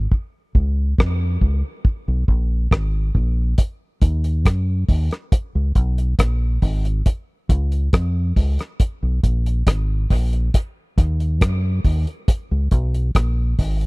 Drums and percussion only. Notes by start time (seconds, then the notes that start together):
0.12 kick
0.55 kick
0.98 kick, cross-stick
1.41 kick
1.85 kick
2.28 kick
2.71 kick, cross-stick
3.15 kick
3.58 kick, closed hi-hat
4.02 kick, closed hi-hat
4.24 closed hi-hat
4.45 kick, cross-stick, closed hi-hat
4.89 kick, open hi-hat
5.11 cross-stick, closed hi-hat
5.32 kick, closed hi-hat
5.75 kick, closed hi-hat
5.98 closed hi-hat
6.19 kick, cross-stick, closed hi-hat
6.62 kick, open hi-hat
6.85 closed hi-hat
7.06 kick, closed hi-hat
7.49 kick, closed hi-hat
7.72 closed hi-hat
7.93 kick, cross-stick, closed hi-hat
8.36 kick, open hi-hat
8.59 cross-stick, closed hi-hat
8.80 kick, closed hi-hat
9.23 kick, closed hi-hat
9.46 closed hi-hat
9.67 kick, cross-stick, closed hi-hat
10.10 kick, open hi-hat
10.33 closed hi-hat
10.54 kick, closed hi-hat
10.98 kick, closed hi-hat
11.20 closed hi-hat
11.41 kick, cross-stick, closed hi-hat
11.84 kick, open hi-hat
12.07 closed hi-hat
12.28 kick, closed hi-hat
12.71 kick, closed hi-hat
12.94 closed hi-hat
13.15 kick, cross-stick, closed hi-hat
13.59 kick, open hi-hat
13.81 closed hi-hat